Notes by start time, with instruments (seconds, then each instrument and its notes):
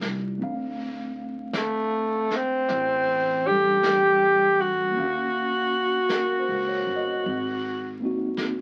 Already playing: tine electric piano G3 C4 C#4 F4
0.01 upright bass C2, snare
0.38 upright bass D2, tine electric piano A3 C4 D4, brush sweep
0.43 tine electric piano F5
1.53 tenor saxophone A3, brush sweep, snare, hi-hat pedal
2.31 snare
2.36 tenor saxophone C4
2.69 upright bass A1, brush sweep, snare
3.46 tine electric piano G3 D4 A4, tenor saxophone G4
3.83 brush sweep, snare, hi-hat pedal
4.61 tenor saxophone F#4
4.91 tine electric piano A#3
4.96 upright bass D#2, tine electric piano C#4 F5, brush sweep
5.03 tine electric piano F#4
6.09 tine electric piano A#4, brush sweep, snare, hi-hat pedal
6.40 tine electric piano C5
6.49 upright bass C#2
6.69 tine electric piano C#5
6.87 upright bass G1
6.96 tine electric piano D#5
7.24 upright bass G#1, brush sweep
8.00 tine electric piano A#3 C4 D#4
8.05 tine electric piano F#4
8.37 brush sweep, snare, hi-hat pedal